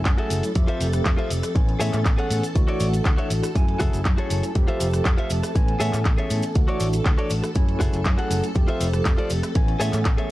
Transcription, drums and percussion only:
0.05 kick, clap, closed hi-hat, maracas
0.18 closed hi-hat
0.30 open hi-hat, maracas
0.43 closed hi-hat, maracas
0.55 kick, closed hi-hat, maracas
0.68 closed hi-hat
0.81 open hi-hat, maracas
0.93 cross-stick, closed hi-hat, maracas
1.05 kick, clap, closed hi-hat, maracas
1.18 closed hi-hat
1.31 open hi-hat, maracas
1.43 cross-stick, closed hi-hat, maracas
1.56 kick, closed hi-hat, maracas
1.69 closed hi-hat
1.81 open hi-hat, maracas
1.93 clap, closed hi-hat, maracas
2.05 kick, clap, closed hi-hat, maracas
2.18 closed hi-hat
2.30 open hi-hat, maracas
2.43 closed hi-hat, maracas
2.55 kick, closed hi-hat, maracas
2.68 closed hi-hat
2.80 open hi-hat, maracas
2.93 closed hi-hat, maracas
3.05 kick, clap, closed hi-hat, maracas
3.18 closed hi-hat
3.30 open hi-hat, maracas
3.43 cross-stick, closed hi-hat, maracas
3.55 kick, closed hi-hat, maracas
3.68 closed hi-hat
3.80 kick, cross-stick, open hi-hat, maracas
3.93 closed hi-hat, maracas
4.05 kick, clap, closed hi-hat, maracas
4.18 closed hi-hat
4.30 open hi-hat, maracas
4.43 closed hi-hat, maracas
4.55 kick, closed hi-hat, maracas
4.68 closed hi-hat
4.80 open hi-hat, maracas
4.93 cross-stick, closed hi-hat, maracas
5.05 kick, clap, closed hi-hat, maracas
5.18 closed hi-hat
5.30 open hi-hat, maracas
5.43 cross-stick, closed hi-hat, maracas
5.56 kick, closed hi-hat, maracas
5.68 closed hi-hat
5.80 open hi-hat, maracas
5.93 clap, closed hi-hat, maracas
6.05 kick, clap, closed hi-hat, maracas
6.18 closed hi-hat
6.30 open hi-hat, maracas
6.43 closed hi-hat, maracas
6.55 kick, closed hi-hat, maracas
6.68 closed hi-hat
6.80 open hi-hat, maracas
6.93 closed hi-hat, maracas
7.05 kick, clap, closed hi-hat, maracas
7.19 closed hi-hat
7.30 open hi-hat, maracas
7.44 cross-stick, closed hi-hat, maracas
7.55 kick, closed hi-hat, maracas
7.69 closed hi-hat
7.81 kick, cross-stick, open hi-hat, maracas
7.93 closed hi-hat, maracas
8.05 kick, clap, closed hi-hat, maracas
8.19 closed hi-hat
8.31 open hi-hat, maracas
8.43 closed hi-hat, maracas
8.55 kick, closed hi-hat, maracas
8.69 closed hi-hat
8.81 open hi-hat, maracas
8.94 cross-stick, closed hi-hat, maracas
9.05 kick, clap, closed hi-hat, maracas
9.19 closed hi-hat
9.30 open hi-hat, maracas
9.43 cross-stick, closed hi-hat, maracas
9.55 kick, closed hi-hat, maracas
9.68 closed hi-hat
9.81 open hi-hat, maracas
9.93 clap, closed hi-hat, maracas
10.05 kick, clap, closed hi-hat, maracas
10.18 closed hi-hat

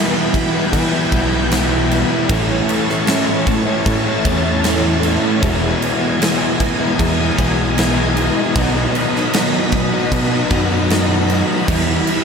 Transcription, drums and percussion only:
0.34 kick, crash
0.73 kick, crash
1.12 kick, crash
1.51 snare, crash
1.91 crash
2.29 kick, crash
2.69 crash
2.89 snare
3.07 snare, crash
3.47 kick, crash
3.86 kick, crash
4.25 kick, crash
4.64 snare, crash
5.03 crash
5.43 kick, crash
5.82 crash
6.22 snare, crash
6.60 kick, crash
6.99 kick, crash
7.39 kick, crash
7.78 snare, crash
8.17 crash
8.56 kick, crash
8.95 crash
9.16 snare
9.33 snare, crash
9.72 kick, crash
10.12 kick, crash
10.50 kick, crash
10.90 snare, crash
11.30 crash
11.68 kick, crash
12.07 crash

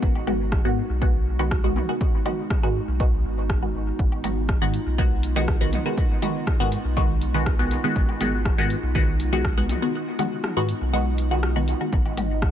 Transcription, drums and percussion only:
0.03 kick
0.15 low woodblock
0.27 mid tom, low woodblock
0.52 kick, cross-stick, mid tom
1.02 kick
1.39 low woodblock
1.51 kick, cross-stick
1.76 mid tom
2.01 kick
2.26 mid tom, low woodblock
2.50 kick, cross-stick, mid tom
3.00 kick
3.50 kick, cross-stick
3.99 kick
4.12 low woodblock
4.24 closed hi-hat, mid tom, low woodblock
4.49 kick, cross-stick, mid tom
4.74 closed hi-hat
4.98 kick
5.23 closed hi-hat
5.36 low woodblock
5.48 kick, cross-stick
5.73 closed hi-hat, mid tom
5.98 kick
6.22 closed hi-hat, mid tom, low woodblock
6.47 kick, cross-stick, mid tom
6.72 closed hi-hat
6.97 kick
7.22 closed hi-hat
7.46 kick, cross-stick
7.71 closed hi-hat
7.96 kick
8.09 low woodblock
8.21 closed hi-hat, mid tom, low woodblock
8.45 kick, cross-stick, mid tom
8.70 closed hi-hat
8.95 kick
9.20 closed hi-hat
9.33 low woodblock
9.45 kick, cross-stick
9.69 closed hi-hat, mid tom
10.19 closed hi-hat, mid tom, low woodblock
10.44 cross-stick, mid tom
10.69 closed hi-hat
11.18 closed hi-hat
11.43 cross-stick
11.68 closed hi-hat
11.93 kick
12.06 low woodblock
12.17 closed hi-hat, mid tom, low woodblock
12.42 kick, cross-stick, mid tom

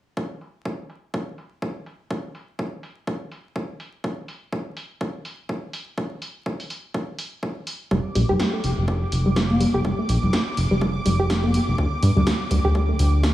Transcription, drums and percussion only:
0.17 kick
0.41 open hi-hat
0.65 kick
0.90 open hi-hat
1.14 kick
1.38 open hi-hat
1.62 kick
1.86 open hi-hat
2.11 kick
2.35 open hi-hat
2.59 kick
2.83 open hi-hat
3.07 kick
3.31 open hi-hat
3.56 kick
3.80 open hi-hat
4.04 kick
4.28 open hi-hat
4.52 kick
4.77 open hi-hat
5.01 kick
5.25 open hi-hat
5.49 kick
5.73 open hi-hat
5.98 kick
6.22 open hi-hat
6.46 kick
6.60 open hi-hat
6.70 open hi-hat
6.94 kick
7.19 open hi-hat
7.43 kick
7.67 open hi-hat
7.91 kick
8.15 open hi-hat
8.29 low conga
8.40 kick, snare
8.64 open hi-hat
8.88 kick
9.12 open hi-hat
9.36 kick, snare
9.50 high conga
9.61 open hi-hat
9.75 low conga
9.85 kick
10.09 open hi-hat
10.23 low conga
10.33 kick, snare
10.57 open hi-hat
10.81 kick
11.06 open hi-hat
11.30 kick, snare
11.44 high conga
11.54 open hi-hat
11.78 kick
12.03 open hi-hat
12.17 low conga
12.27 kick, snare
12.51 open hi-hat
12.75 kick
12.99 open hi-hat
13.23 kick, snare

